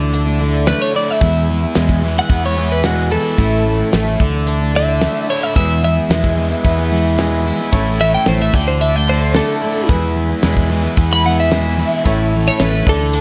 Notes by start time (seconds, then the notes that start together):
Already playing: D2 D3 A3 D4 E4 A4
0.00 A3 D4 E4
0.13 D4, closed hi-hat
0.25 A3 D4 E4
0.39 D3 A3 D4 E4
0.67 D3 A3 D4 E4 B4, snare, closed hi-hat
0.82 C#5
0.94 D3 A3 D4 E4 D5
1.08 A3 D4 E4 E5
1.21 E2 B2 E3 G#3 B3 E4 G#4, kick, closed hi-hat
1.49 E3 G#3 B3 E4
1.63 E3 G#3 B3 E4
1.75 E2 B2 E3 G#3 B3 E4, snare, closed hi-hat
1.89 kick, snare
2.02 E3 G#3 B3 E4
2.16 E3 G#3 B3 E4 F#5
2.29 E2 B3, kick, closed hi-hat
2.44 E3 G#3 B3 E4 C#5
2.57 E3 G#3 B3 E4
2.72 B4
2.83 E2 B2 E3 G#3 B3 E4 F#4, snare, closed hi-hat
3.10 E3 G#3 B3 E4 A4
3.38 A1 A2 E3 A3 C#4 E4 A4, kick, closed hi-hat
3.64 E3 A3 C#4 E4
3.78 A3 C#4 E4
3.92 A1 A2 E3 A3 C#4 E4, snare, closed hi-hat
4.19 D2 D3 A3 D4 E4 A4, kick
4.33 A3 D4 E4
4.47 D4, closed hi-hat
4.60 A3 D4 E4
4.74 D3 A3 D4 E4 E5
5.01 D3 A3 D4 E4, snare, closed hi-hat
5.28 D3 A3 D4 E4 C#5
5.42 A3 D4 E4 E5
5.55 E2 B2 E3 G#3 B3 E4 G#4 B4 E5, kick, closed hi-hat
5.82 E3 G#3 B3 E4 E5
5.96 E3 G#3 B3 E4
6.09 E2 B2 E3 G#3 B3 E4 G#4 B4, snare, closed hi-hat
6.24 kick
6.36 E3 G#3 B3 E4
6.51 E3 G#3 B3 E4
6.64 E2 B3 E4 G#4 B4, kick, closed hi-hat
6.77 E3 G#3 B3 E4
6.90 E3 G#3 B3 E4
7.18 E2 B2 E3 G#3 B3 E4 G#4 B4, snare, closed hi-hat
7.44 E3 G#3 B3 E4
7.59 E3 G#3 B3 E4
7.72 A1 A2 E3 A3 C#4 E4 A4 C#5, kick, closed hi-hat
8.00 E3 A3 C#4 E4 E5
8.13 A3 C#4 E4 G5
8.26 A1 A2 E3 A3 C#4 E4 A4 C5 C#5, snare, closed hi-hat
8.40 E5, snare
8.53 D2 D3 A3 D4 E4 A4 D5 G5, kick
8.68 A3 D4 E4 C5
8.81 D4 E5, closed hi-hat
8.95 A3 D4 E4 G5
9.09 D3 A3 D4 E4 C5
9.34 D3 A3 D4 E4 A4 D5, snare, closed hi-hat
9.63 D3 A3 D4 E4
9.76 A3 D4 E4
9.88 E2 B2 E3 G#3 B3 E4 G#4 B4, kick, closed hi-hat
10.15 E3 G#3 B3 E4
10.29 E3 G#3 B3 E4
10.43 E2 B2 E3 G#3 B3 E4 G#4 B4, snare, closed hi-hat
10.57 kick
10.70 E3 G#3 B3 E4
10.83 E3 G#3 B3 E4
10.97 E2 B3 E4 G#4 B4, kick, closed hi-hat
11.11 E3 G#3 B3 E4 B5
11.24 E3 G#3 B3 E4 F#5
11.40 E5
11.51 E2 B2 E3 G#3 B3 E4 G#4 B4, snare, closed hi-hat
11.78 E3 G#3 B3 E4
11.91 E3 G#3 B3 E4
12.05 A1 A2 E3 A3 C#4 E4 A4 C#5, kick, closed hi-hat
12.34 E3 A3 C#4 E4
12.47 A3 C#4 E4 C#5
12.60 A1 A2 E3 A3 C#4 E4 A4 B4 C#5, snare, closed hi-hat
12.73 snare
12.87 D2 D3 A3 D4 E4 A4 D5, kick
13.00 A3 D4 E4
13.13 D4, closed hi-hat